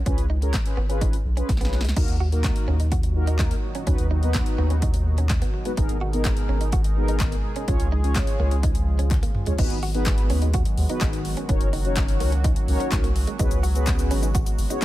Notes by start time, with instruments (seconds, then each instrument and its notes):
0.06 analog synth bass C#2, clean electric guitar C#4, analog polysynth C#4 F4 G#4 B4, kick, closed hi-hat
0.18 closed hi-hat
0.30 clean electric guitar D#4
0.42 analog polysynth C#4 F4 G#4 A#4, muted clean electric guitar stroke, closed hi-hat
0.53 muted clean electric guitar stroke, kick, snare, clap, closed hi-hat
0.66 analog polysynth C#4 F4 G#4 B4, closed hi-hat
0.77 analog synth bass G#1, clean electric guitar B3
0.89 analog polysynth C#4 F4 G#4 B4, clean electric guitar C#4, closed hi-hat
1.01 clean electric guitar D#4, kick, closed hi-hat
1.13 muted clean electric guitar stroke, closed hi-hat
1.25 analog synth bass B1
1.37 clean electric guitar C#4, analog polysynth C#4 F4 G#4 B4, closed hi-hat
1.49 analog synth bass B1, kick, snare, closed hi-hat
1.57 clean electric guitar B3, analog polysynth C#4 F4 G#4, snare, closed hi-hat
1.61 analog polysynth B4, snare
1.73 muted clean electric guitar stroke, snare
1.81 analog synth bass C#2, clean electric guitar G#3, snare, closed hi-hat
1.89 snare
1.96 analog synth bass D#2, analog synth pad A#2 D#3 F#3 D#4 F#4, analog polysynth A#3 D#4 F#4 A#4, clean electric guitar D#4, kick, closed hi-hat, crash
2.08 analog synth bass D#2, closed hi-hat
2.20 clean electric guitar F#4
2.32 analog polysynth A#3 D#4 F#4 A#4, muted clean electric guitar stroke, closed hi-hat
2.44 muted clean electric guitar stroke, kick, snare, clap, closed hi-hat
2.56 closed hi-hat
2.68 analog synth bass D#2, clean electric guitar C#4
2.80 clean electric guitar D#4, closed hi-hat
2.92 clean electric guitar F#4, kick, closed hi-hat
3.03 muted clean electric guitar stroke, closed hi-hat
3.15 analog polysynth A#3 D#4 F#4 A#4
3.27 clean electric guitar D#4, closed hi-hat
3.39 clean electric guitar D#4, kick, snare, clap, closed hi-hat
3.51 muted clean electric guitar stroke, closed hi-hat
3.75 clean electric guitar C#4, closed hi-hat
3.87 analog synth bass D#2, analog synth pad B2, analog polysynth B3 D#4 F#4 B4, clean electric guitar C#4, kick, closed hi-hat
3.98 analog synth bass D#2, closed hi-hat
4.11 clean electric guitar D#4
4.22 analog polysynth B3 D#4 F#4 B4, muted clean electric guitar stroke, closed hi-hat
4.34 muted clean electric guitar stroke, kick, snare, clap, closed hi-hat
4.46 closed hi-hat
4.58 analog synth bass D#2, clean electric guitar B3
4.70 clean electric guitar C#4, closed hi-hat
4.82 clean electric guitar D#4, kick, closed hi-hat
4.94 muted clean electric guitar stroke, closed hi-hat
5.18 clean electric guitar C#4, closed hi-hat
5.29 kick, snare, clap, closed hi-hat
5.42 clean electric guitar B3, closed hi-hat
5.54 muted clean electric guitar stroke
5.65 clean electric guitar G#3, analog polysynth B3 D#4 F#4 B4, closed hi-hat
5.77 analog synth bass G#1, analog synth pad G#3 D#4 G#4 A#4, analog polysynth B3 D#4 G#4 A#4, clean electric guitar D#4, kick, closed hi-hat
5.89 analog synth bass G#1, closed hi-hat
6.01 clean electric guitar F#4
6.13 analog polysynth B3 D#4 G#4 A#4, muted clean electric guitar stroke, closed hi-hat
6.25 muted clean electric guitar stroke, kick, snare, clap, closed hi-hat
6.37 closed hi-hat
6.49 analog synth bass G#1, clean electric guitar C#4
6.61 clean electric guitar D#4, closed hi-hat
6.72 clean electric guitar F#4, kick, closed hi-hat
6.84 muted clean electric guitar stroke, closed hi-hat
6.96 analog polysynth B3 D#4 G#4 A#4
7.08 clean electric guitar D#4, closed hi-hat
7.20 clean electric guitar D#4, kick, snare, clap, closed hi-hat
7.32 muted clean electric guitar stroke, closed hi-hat
7.56 clean electric guitar C#4, closed hi-hat
7.68 analog synth bass C#2, analog synth pad C#3 F3 F4, analog polysynth C#4 F4 G#4 C#5, clean electric guitar C#4, kick, closed hi-hat
7.80 analog synth bass C#2, closed hi-hat
7.92 clean electric guitar D#4
8.03 analog polysynth C#4 F4 G#4 C#5, muted clean electric guitar stroke, closed hi-hat
8.15 muted clean electric guitar stroke, kick, snare, clap, closed hi-hat
8.27 closed hi-hat
8.39 analog synth bass C#2, clean electric guitar A#3
8.51 clean electric guitar C#4, closed hi-hat
8.63 clean electric guitar D#4, kick, closed hi-hat
8.75 muted clean electric guitar stroke, closed hi-hat
8.99 clean electric guitar C#4, closed hi-hat
9.11 kick, clap, closed hi-hat, high tom
9.23 clean electric guitar A#3, closed hi-hat
9.35 muted clean electric guitar stroke, mid tom
9.46 clean electric guitar G#3, analog polysynth C#4 F4 G#4 C#5, closed hi-hat, floor tom
9.58 analog synth bass G#1, analog synth pad D#3 F#3 G#3 B3 F#4, analog polysynth B3 D#4 F#4 G#4 B4, clean electric guitar D#4, kick, closed hi-hat, crash
9.70 analog synth bass G#1, closed hi-hat
9.83 clean electric guitar F#4, open hi-hat
9.94 analog polysynth B3 D#4 F#4 G#4 B4, muted clean electric guitar stroke, closed hi-hat
10.06 muted clean electric guitar stroke, kick, snare, clap, closed hi-hat
10.18 closed hi-hat
10.30 analog synth bass D#2, clean electric guitar C#4, open hi-hat
10.42 clean electric guitar D#4, closed hi-hat
10.54 clean electric guitar F#4, kick, closed hi-hat
10.65 muted clean electric guitar stroke, closed hi-hat
10.77 analog synth bass D#2, open hi-hat
10.89 analog polysynth B3 D#4 F#4 G#4 B4, clean electric guitar D#4, closed hi-hat
11.01 analog synth bass G#1, clean electric guitar D#4, kick, snare, clap, closed hi-hat
11.13 muted clean electric guitar stroke, closed hi-hat
11.25 open hi-hat
11.37 clean electric guitar C#4, closed hi-hat
11.49 analog synth bass F#1, analog synth pad F#3 A#3 C#4, analog polysynth C#4 D#4 F#4 A#4 C#5, clean electric guitar C#4, kick, closed hi-hat
11.61 analog synth bass F#1, closed hi-hat
11.73 clean electric guitar D#4, open hi-hat
11.85 analog polysynth C#4 D#4 F#4 A#4 C#5, muted clean electric guitar stroke, closed hi-hat
11.96 muted clean electric guitar stroke, kick, snare, clap, closed hi-hat
12.08 closed hi-hat
12.20 analog synth bass C#2, clean electric guitar A#3, open hi-hat
12.32 clean electric guitar C#4, closed hi-hat
12.44 clean electric guitar D#4, kick, closed hi-hat
12.56 muted clean electric guitar stroke, closed hi-hat
12.68 analog synth bass C#2, analog polysynth C#4 D#4 F#4 A#4 C#5, open hi-hat
12.80 clean electric guitar C#4, closed hi-hat
12.92 analog synth bass C2, kick, snare, clap, closed hi-hat
13.04 clean electric guitar A#3, closed hi-hat
13.16 muted clean electric guitar stroke, open hi-hat
13.27 clean electric guitar G#3, closed hi-hat
13.39 analog synth bass C#2, analog synth pad C#3 G#3 B3, analog polysynth B3 C#4 F#4 G#4 B4, clean electric guitar D#4, kick, closed hi-hat, shaker
13.51 analog synth bass C#2, closed hi-hat, shaker
13.63 clean electric guitar F#4, open hi-hat, shaker
13.75 analog polysynth B3 C#4 F#4 G#4 B4, muted clean electric guitar stroke, closed hi-hat, shaker
13.87 muted clean electric guitar stroke, kick, snare, clap, closed hi-hat, shaker
13.99 closed hi-hat, shaker
14.11 analog synth bass G#1, clean electric guitar C#4, open hi-hat, shaker
14.23 clean electric guitar D#4, closed hi-hat, shaker
14.35 clean electric guitar F#4, kick, closed hi-hat, shaker
14.46 muted clean electric guitar stroke, closed hi-hat, shaker
14.58 analog synth bass G#1, open hi-hat, shaker
14.70 analog polysynth B3 C#4 F#4 G#4 C#5, clean electric guitar D#4, closed hi-hat, shaker